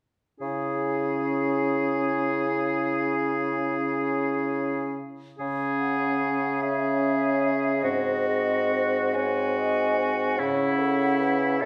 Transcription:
0.40 bassoon C#3, french horn C#4, clarinet E4, oboe G#4
5.39 bassoon C#3, french horn C#4, oboe G#4
5.79 flute F#5
6.61 french horn C#4, oboe G#4, clarinet C#5, flute E5
7.81 bassoon G#2, french horn C4, oboe F#4, clarinet C5, flute D#5
8.28 clarinet G#4
8.73 clarinet C5
9.14 french horn C4, oboe F#4, clarinet C#5, flute G#5
9.58 clarinet D#5
9.98 clarinet C5
10.37 bassoon C#3, french horn C#4, oboe E4, clarinet C#5, flute F#5
10.79 clarinet A4
11.20 clarinet B4
11.59 french horn C#4, oboe A4, clarinet C#5, flute E5

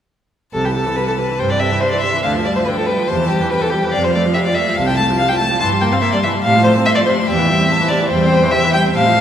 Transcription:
0.53 cello C2, viola C3, violin A4 A5
0.65 viola E3, violin G4
0.74 viola C3, violin A4
0.85 viola E3
0.96 viola C3, violin B4
1.08 viola E3, violin A4
1.18 viola C3, violin B4
1.30 viola E3
1.39 cello G2, viola C3, violin C5 G5
1.50 viola E3, violin D5
1.60 viola C3, violin E5
1.71 viola E3
1.81 viola C3, violin C5 C6
1.91 viola E3, violin D5
2.01 viola C3, violin E5
2.14 viola E3
2.23 cello D2, viola D3, violin F5 A5
2.35 viola F3
2.45 viola G3, violin D5
2.56 viola F3, violin C5
2.65 viola D3, violin B4 G5
2.77 viola F3, violin A4
2.86 viola G3, violin B4
2.97 viola F3
3.07 cello E2, viola C3, violin C5 A5
3.19 viola E3
3.28 viola G3, violin G4
3.41 viola E3
3.50 viola C3, violin B4 G5
3.62 viola E3, violin A4
3.71 viola G3, violin G4
3.84 viola E3
3.92 cello F2, viola C3, violin D5 F5
4.04 viola F3, violin C5
4.14 viola A3, violin D5
4.26 viola F3
4.34 viola C3, violin E5
4.45 viola F3, violin D5
4.55 viola A3, violin E5
4.69 viola F3
4.76 cello C2, viola C3, violin F5 A5
4.87 viola F3, violin G5
4.97 viola A3, violin A5
5.10 viola F3
5.17 viola C3, violin F5
5.29 viola F3, violin G5
5.39 viola A3, violin A5
5.51 viola F3
5.60 cello G2, viola E3, violin A5 C6
5.72 viola G3
5.81 viola A#3, violin G5
5.92 viola C4, violin F5
6.01 viola A#3, violin E5
6.12 viola G3, violin D5
6.23 viola E3, violin E5
6.35 viola G3
6.42 cello A2, viola C3, violin F5 A5
6.56 viola F3
6.64 viola A3, violin C5
6.77 viola C4
6.86 viola A3, violin E5 C6
6.95 viola F3, violin D5
7.06 viola C3, violin C5
7.18 viola F3
7.27 cello E2, viola C3, violin E5 G5
7.39 viola E3
7.50 viola G3
7.60 viola C4
7.69 viola G3, violin A5
7.81 viola E3
7.89 viola C3, violin D5
8.01 viola E3
8.09 cello E2, viola G3, violin C5 G5
8.22 viola C4
8.33 viola G3
8.43 viola E3
8.51 viola C3, violin E5
8.64 viola E3
8.73 viola G3, violin G5
8.86 viola C4
8.95 cello A2, viola C3, violin F5 A5
9.06 viola F3
9.17 viola A3

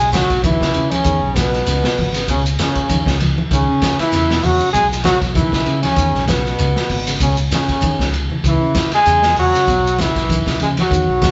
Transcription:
Already playing: fingered electric bass B1, tenor saxophone G#3, trombone section G#3, trombone G#4
0.12 clean electric guitar C#3, trombone section F#3, tenor saxophone F#3, trombone F#4, snare, ride bell, high conga, shekere
0.30 fingered electric bass B1, kick, snare, ride bell, shekere
0.43 clean electric guitar D#3, trombone section E3, tenor saxophone E3, trombone E4, kick, ride bell, high conga, low conga, shekere
0.61 clean electric guitar C#3, kick, snare
0.74 fingered electric bass C#3, ride bell, low conga, shekere
0.91 trombone section C#3, tenor saxophone C#3, clean electric guitar E3, trombone C#4, ride bell, high conga
1.04 fingered electric bass E2, clean electric guitar D#3, kick, ride bell, high conga, shekere
1.22 fingered electric bass B1
1.36 trombone section B2, tenor saxophone B2, clean electric guitar C#3, trombone B3, kick, snare, ride bell, high conga, shekere
1.54 snare, shekere
1.66 fingered electric bass C#2, clean electric guitar C#3, snare, ride bell, high conga, shekere
1.84 clean electric guitar B2, snare
1.97 fingered electric bass G#1, open hi-hat, high conga, low conga, shekere
2.14 clean electric guitar C#3, snare, ride bell, shekere
2.28 fingered electric bass C#2, clean electric guitar B2, trombone section C#3, tenor saxophone C#3, trombone C#4, kick, ride bell, high conga, low conga, shekere
2.46 shekere
2.59 clean electric guitar C#3, trombone section C#3, tenor saxophone C#3, trombone C#4, snare, ride bell, high conga, shekere
2.75 kick, ride bell, shekere
2.89 clean electric guitar D#3, kick, ride bell, high conga, low conga, shekere
3.06 fingered electric bass C#2, clean electric guitar C#3, kick, snare
3.20 snare, ride bell, high conga, low conga, shekere
3.38 clean electric guitar E3, high conga
3.51 fingered electric bass C#2, tenor saxophone C#3, trombone section C#3, clean electric guitar D#3, trombone C#4, kick, ride bell, high conga, shekere
3.69 fingered electric bass C#3
3.82 clean electric guitar C#3, kick, snare, ride bell, high conga, shekere
3.99 tenor saxophone E3, trombone section E3, trombone E4, muted fingered electric bass stroke, snare, ride bell, shekere
4.12 fingered electric bass E2, clean electric guitar C#3, snare, ride bell, shekere
4.30 clean electric guitar B2, snare
4.43 fingered electric bass E2, trombone section F#3, tenor saxophone F#3, trombone F#4, open hi-hat, high conga, low conga, shekere
4.60 clean electric guitar C#3, shekere
4.73 fingered electric bass B1, clean electric guitar B2, tenor saxophone G#3, trombone section G#3, trombone G#4, kick, ride bell, high conga, shekere
4.92 snare, shekere
5.04 clean electric guitar C#3, tenor saxophone F#3, trombone section F#3, trombone F#4, snare, ride bell, high conga, shekere
5.21 fingered electric bass B1, kick, snare, ride bell, shekere
5.35 clean electric guitar D#3, tenor saxophone E3, trombone section E3, trombone E4, kick, ride bell, high conga, low conga, shekere
5.52 clean electric guitar C#3, kick, snare
5.66 fingered electric bass C#3, ride bell, low conga, shekere
5.83 tenor saxophone C#3, trombone section C#3, clean electric guitar E3, trombone C#4, snare, ride bell, high conga
5.96 fingered electric bass E2, clean electric guitar D#3, kick, snare, ride bell, high conga, shekere
6.14 fingered electric bass B1, snare
6.26 trombone section B2, tenor saxophone B2, clean electric guitar C#3, trombone B3, kick, snare, ride bell, high conga, shekere
6.46 snare, shekere
6.59 fingered electric bass C#2, clean electric guitar C#3, ride bell, high conga, shekere
6.76 clean electric guitar B2, snare
6.89 fingered electric bass G#1, open hi-hat, low conga, shekere
7.07 clean electric guitar C#3, snare, ride bell, shekere
7.20 fingered electric bass C#2, clean electric guitar B2, trombone section C#3, tenor saxophone C#3, trombone C#4, kick, ride bell, high conga, low conga, shekere
7.37 shekere
7.51 trombone section C#3, clean electric guitar C#3, tenor saxophone C#3, trombone C#4, snare, ride bell, high conga, shekere
7.68 kick, snare, ride bell, shekere
7.81 clean electric guitar D#3, kick, ride bell, high conga, shekere
7.99 fingered electric bass C#2, clean electric guitar C#3, kick, snare
8.13 ride bell, low conga, shekere
8.30 clean electric guitar E3, low conga
8.44 fingered electric bass C#2, clean electric guitar E3, trombone section E3, trombone E4, kick, ride bell, high conga, shekere
8.48 tenor saxophone E3
8.61 fingered electric bass C#3
8.75 clean electric guitar C#3, kick, snare, ride bell, high conga, shekere
8.92 trombone section G#3, tenor saxophone G#3, trombone G#4, muted fingered electric bass stroke, snare, ride bell, shekere
9.05 fingered electric bass E2, clean electric guitar C#3, ride bell, shekere
9.23 clean electric guitar B2, snare
9.36 fingered electric bass E2, trombone section F#3, tenor saxophone F#3, trombone F#4, open hi-hat, low conga, shekere
9.55 clean electric guitar C#3, snare, shekere
9.67 fingered electric bass B1, clean electric guitar B2, kick, ride bell, shekere
9.87 shekere
9.98 clean electric guitar C#3, trombone section E3, tenor saxophone E3, trombone E4, snare, ride bell, high conga, shekere
10.15 fingered electric bass B1, kick, snare, ride bell, shekere
10.29 clean electric guitar D#3, kick, ride bell, high conga, shekere
10.46 clean electric guitar C#3, kick, snare
10.60 fingered electric bass C#3, trombone section G#3, tenor saxophone G#3, trombone G#4, ride bell, high conga, low conga, shekere
10.77 clean electric guitar E3, trombone section F#3, tenor saxophone F#3, trombone F#4, snare, ride bell, high conga
10.91 fingered electric bass E2, clean electric guitar D#3, kick, ride bell, high conga, shekere
11.09 fingered electric bass B1
11.22 clean electric guitar C#3, kick, snare, ride bell, high conga, shekere

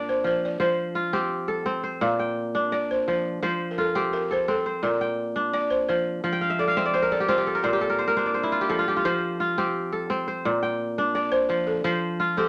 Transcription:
Already playing: kora A#2 C4 D4 C5 D5 G5
0.09 balafon C5
0.24 kora F3, balafon C5
0.45 balafon D5
0.60 kora F3 C5, balafon C5
0.95 kora F4
1.13 kora C4 G4
1.48 kora A4
1.66 kora C4
1.84 kora C5
2.01 kora A#2, balafon F5
2.19 kora G5
2.55 kora D4
2.72 kora D5, balafon D5
2.91 balafon C5
3.08 kora F3, balafon C5
3.43 kora F3 C5
3.71 balafon A#4
3.78 kora F4, balafon A4
3.95 kora C4 G4
4.13 balafon A#4
4.31 kora A4, balafon C5
4.48 kora C4, balafon A4
4.66 kora C5
4.83 kora A#2, balafon A#4
5.01 kora G5
5.36 kora D4
5.53 kora D5, balafon D5
5.70 balafon C5
5.89 kora F3, balafon C5
6.24 kora F3
6.33 kora G5
6.41 kora F5
6.50 kora E5
6.59 balafon A4, kora D5
6.68 kora F5
6.77 kora C4 E5
6.85 kora D5
6.94 kora C5, balafon C5
7.02 kora A#4
7.12 kora A4, balafon D5
7.20 kora G4
7.28 kora C4 F4, balafon C5
7.38 kora G4
7.47 kora A4
7.55 kora A#4
7.63 kora A#2 C5, balafon A#4
7.73 kora G4
7.81 kora A4
7.90 kora A#4
7.99 kora C5
8.08 kora A#4
8.17 kora D4 C5
8.26 kora D5
8.34 kora C5
8.43 kora E4
8.52 kora F4
8.61 kora G4
8.69 kora F3 A4
8.79 kora F4
8.88 kora G4
8.96 kora F4
9.05 kora F3 C5
9.40 kora F4
9.58 kora C4 G4
9.92 kora A4
10.10 kora C4
10.28 kora C5
10.45 kora A#2
10.63 kora G5
10.98 kora D4
11.15 balafon D5, kora D5
11.32 balafon C5
11.49 kora F3, balafon C5
11.67 balafon A4
11.84 kora F3 C5
12.20 kora F4
12.37 kora C4 G4, balafon A4

